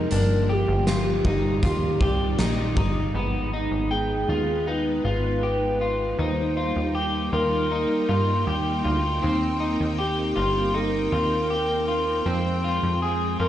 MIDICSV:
0, 0, Header, 1, 6, 480
1, 0, Start_track
1, 0, Tempo, 759494
1, 70, Time_signature, 4, 2, 24, 8
1, 8523, End_track
2, 0, Start_track
2, 0, Title_t, "Soft synth lead"
2, 0, Program_c, 0, 80
2, 0, Note_on_c, 0, 70, 106
2, 77, Note_off_c, 0, 70, 0
2, 81, Note_on_c, 0, 70, 103
2, 330, Note_on_c, 0, 67, 91
2, 340, Note_off_c, 0, 70, 0
2, 800, Note_off_c, 0, 67, 0
2, 803, Note_on_c, 0, 67, 91
2, 1731, Note_off_c, 0, 67, 0
2, 2474, Note_on_c, 0, 68, 84
2, 2954, Note_on_c, 0, 71, 109
2, 2964, Note_off_c, 0, 68, 0
2, 3928, Note_on_c, 0, 72, 103
2, 3937, Note_off_c, 0, 71, 0
2, 4399, Note_off_c, 0, 72, 0
2, 4633, Note_on_c, 0, 70, 119
2, 5566, Note_off_c, 0, 70, 0
2, 6315, Note_on_c, 0, 67, 86
2, 6787, Note_on_c, 0, 70, 112
2, 6797, Note_off_c, 0, 67, 0
2, 7747, Note_on_c, 0, 72, 102
2, 7757, Note_off_c, 0, 70, 0
2, 8229, Note_off_c, 0, 72, 0
2, 8473, Note_on_c, 0, 70, 127
2, 8523, Note_off_c, 0, 70, 0
2, 8523, End_track
3, 0, Start_track
3, 0, Title_t, "Clean electric guitar"
3, 0, Program_c, 1, 27
3, 0, Note_on_c, 1, 63, 65
3, 70, Note_off_c, 1, 63, 0
3, 73, Note_on_c, 1, 62, 78
3, 311, Note_off_c, 1, 62, 0
3, 312, Note_on_c, 1, 67, 80
3, 550, Note_off_c, 1, 67, 0
3, 553, Note_on_c, 1, 65, 74
3, 791, Note_off_c, 1, 65, 0
3, 796, Note_on_c, 1, 63, 82
3, 1029, Note_off_c, 1, 63, 0
3, 1031, Note_on_c, 1, 65, 81
3, 1271, Note_off_c, 1, 65, 0
3, 1273, Note_on_c, 1, 67, 74
3, 1511, Note_off_c, 1, 67, 0
3, 1511, Note_on_c, 1, 63, 78
3, 1744, Note_off_c, 1, 63, 0
3, 1752, Note_on_c, 1, 63, 70
3, 1990, Note_off_c, 1, 63, 0
3, 1993, Note_on_c, 1, 59, 82
3, 2231, Note_off_c, 1, 59, 0
3, 2234, Note_on_c, 1, 63, 85
3, 2470, Note_on_c, 1, 79, 82
3, 2472, Note_off_c, 1, 63, 0
3, 2710, Note_off_c, 1, 79, 0
3, 2713, Note_on_c, 1, 65, 81
3, 2950, Note_off_c, 1, 65, 0
3, 2953, Note_on_c, 1, 63, 81
3, 3188, Note_off_c, 1, 63, 0
3, 3190, Note_on_c, 1, 65, 80
3, 3430, Note_off_c, 1, 65, 0
3, 3432, Note_on_c, 1, 67, 79
3, 3670, Note_off_c, 1, 67, 0
3, 3673, Note_on_c, 1, 65, 73
3, 3911, Note_off_c, 1, 65, 0
3, 3914, Note_on_c, 1, 63, 82
3, 4149, Note_off_c, 1, 63, 0
3, 4152, Note_on_c, 1, 65, 76
3, 4391, Note_off_c, 1, 65, 0
3, 4391, Note_on_c, 1, 67, 84
3, 4630, Note_off_c, 1, 67, 0
3, 4633, Note_on_c, 1, 65, 89
3, 4871, Note_off_c, 1, 65, 0
3, 4876, Note_on_c, 1, 63, 89
3, 5111, Note_on_c, 1, 65, 82
3, 5113, Note_off_c, 1, 63, 0
3, 5350, Note_off_c, 1, 65, 0
3, 5353, Note_on_c, 1, 67, 77
3, 5587, Note_off_c, 1, 67, 0
3, 5590, Note_on_c, 1, 65, 74
3, 5829, Note_on_c, 1, 60, 89
3, 5830, Note_off_c, 1, 65, 0
3, 6065, Note_off_c, 1, 60, 0
3, 6068, Note_on_c, 1, 63, 80
3, 6309, Note_off_c, 1, 63, 0
3, 6310, Note_on_c, 1, 67, 80
3, 6543, Note_off_c, 1, 67, 0
3, 6546, Note_on_c, 1, 65, 93
3, 6788, Note_off_c, 1, 65, 0
3, 6789, Note_on_c, 1, 63, 84
3, 7029, Note_on_c, 1, 65, 77
3, 7030, Note_off_c, 1, 63, 0
3, 7268, Note_off_c, 1, 65, 0
3, 7270, Note_on_c, 1, 67, 75
3, 7506, Note_off_c, 1, 67, 0
3, 7508, Note_on_c, 1, 65, 71
3, 7749, Note_off_c, 1, 65, 0
3, 7750, Note_on_c, 1, 60, 83
3, 7990, Note_off_c, 1, 60, 0
3, 7990, Note_on_c, 1, 65, 85
3, 8227, Note_off_c, 1, 65, 0
3, 8230, Note_on_c, 1, 68, 86
3, 8465, Note_off_c, 1, 68, 0
3, 8467, Note_on_c, 1, 65, 82
3, 8523, Note_off_c, 1, 65, 0
3, 8523, End_track
4, 0, Start_track
4, 0, Title_t, "String machine"
4, 0, Program_c, 2, 50
4, 0, Note_on_c, 2, 58, 71
4, 66, Note_on_c, 2, 65, 89
4, 68, Note_on_c, 2, 55, 67
4, 69, Note_on_c, 2, 53, 79
4, 1002, Note_off_c, 2, 58, 0
4, 1019, Note_off_c, 2, 55, 0
4, 1020, Note_off_c, 2, 53, 0
4, 1031, Note_on_c, 2, 74, 84
4, 1033, Note_on_c, 2, 51, 84
4, 1033, Note_on_c, 2, 55, 78
4, 1969, Note_off_c, 2, 65, 0
4, 1981, Note_off_c, 2, 74, 0
4, 1982, Note_off_c, 2, 51, 0
4, 1982, Note_off_c, 2, 55, 0
4, 1983, Note_on_c, 2, 56, 72
4, 1986, Note_on_c, 2, 59, 75
4, 1986, Note_on_c, 2, 71, 92
4, 1990, Note_on_c, 2, 63, 76
4, 3887, Note_off_c, 2, 56, 0
4, 3889, Note_off_c, 2, 59, 0
4, 3889, Note_off_c, 2, 71, 0
4, 3919, Note_on_c, 2, 79, 86
4, 3920, Note_on_c, 2, 55, 68
4, 3920, Note_on_c, 2, 58, 68
4, 5816, Note_off_c, 2, 55, 0
4, 5838, Note_on_c, 2, 60, 70
4, 7724, Note_off_c, 2, 63, 0
4, 7730, Note_off_c, 2, 58, 0
4, 7744, Note_on_c, 2, 53, 75
4, 7748, Note_on_c, 2, 56, 77
4, 8523, Note_off_c, 2, 53, 0
4, 8523, Note_off_c, 2, 56, 0
4, 8523, Note_off_c, 2, 60, 0
4, 8523, Note_off_c, 2, 79, 0
4, 8523, End_track
5, 0, Start_track
5, 0, Title_t, "Analog synth bass"
5, 0, Program_c, 3, 38
5, 73, Note_on_c, 3, 31, 107
5, 414, Note_off_c, 3, 31, 0
5, 430, Note_on_c, 3, 31, 98
5, 772, Note_off_c, 3, 31, 0
5, 788, Note_on_c, 3, 31, 94
5, 1017, Note_off_c, 3, 31, 0
5, 1031, Note_on_c, 3, 39, 98
5, 1258, Note_off_c, 3, 39, 0
5, 1268, Note_on_c, 3, 36, 81
5, 1497, Note_off_c, 3, 36, 0
5, 1511, Note_on_c, 3, 34, 97
5, 1739, Note_off_c, 3, 34, 0
5, 1750, Note_on_c, 3, 31, 85
5, 1978, Note_off_c, 3, 31, 0
5, 1987, Note_on_c, 3, 32, 113
5, 2330, Note_off_c, 3, 32, 0
5, 2346, Note_on_c, 3, 32, 93
5, 2690, Note_off_c, 3, 32, 0
5, 2709, Note_on_c, 3, 39, 94
5, 3165, Note_off_c, 3, 39, 0
5, 3188, Note_on_c, 3, 32, 95
5, 3884, Note_off_c, 3, 32, 0
5, 3910, Note_on_c, 3, 39, 114
5, 4252, Note_off_c, 3, 39, 0
5, 4274, Note_on_c, 3, 39, 93
5, 4614, Note_off_c, 3, 39, 0
5, 4630, Note_on_c, 3, 39, 94
5, 4972, Note_off_c, 3, 39, 0
5, 5112, Note_on_c, 3, 43, 90
5, 5339, Note_off_c, 3, 43, 0
5, 5354, Note_on_c, 3, 39, 96
5, 5580, Note_off_c, 3, 39, 0
5, 5595, Note_on_c, 3, 38, 93
5, 5820, Note_off_c, 3, 38, 0
5, 5839, Note_on_c, 3, 39, 110
5, 6177, Note_off_c, 3, 39, 0
5, 6196, Note_on_c, 3, 39, 94
5, 6535, Note_off_c, 3, 39, 0
5, 6552, Note_on_c, 3, 31, 97
5, 7007, Note_off_c, 3, 31, 0
5, 7029, Note_on_c, 3, 39, 97
5, 7724, Note_off_c, 3, 39, 0
5, 7747, Note_on_c, 3, 41, 110
5, 8090, Note_off_c, 3, 41, 0
5, 8109, Note_on_c, 3, 41, 93
5, 8452, Note_off_c, 3, 41, 0
5, 8467, Note_on_c, 3, 41, 94
5, 8523, Note_off_c, 3, 41, 0
5, 8523, End_track
6, 0, Start_track
6, 0, Title_t, "Drums"
6, 68, Note_on_c, 9, 42, 66
6, 131, Note_off_c, 9, 42, 0
6, 550, Note_on_c, 9, 38, 100
6, 550, Note_on_c, 9, 42, 57
6, 551, Note_on_c, 9, 54, 53
6, 613, Note_off_c, 9, 38, 0
6, 613, Note_off_c, 9, 42, 0
6, 614, Note_off_c, 9, 54, 0
6, 789, Note_on_c, 9, 36, 79
6, 852, Note_off_c, 9, 36, 0
6, 1028, Note_on_c, 9, 42, 62
6, 1029, Note_on_c, 9, 36, 73
6, 1092, Note_off_c, 9, 36, 0
6, 1092, Note_off_c, 9, 42, 0
6, 1268, Note_on_c, 9, 36, 88
6, 1331, Note_off_c, 9, 36, 0
6, 1508, Note_on_c, 9, 42, 69
6, 1509, Note_on_c, 9, 38, 119
6, 1509, Note_on_c, 9, 54, 61
6, 1571, Note_off_c, 9, 42, 0
6, 1572, Note_off_c, 9, 38, 0
6, 1572, Note_off_c, 9, 54, 0
6, 1749, Note_on_c, 9, 36, 98
6, 1812, Note_off_c, 9, 36, 0
6, 8523, End_track
0, 0, End_of_file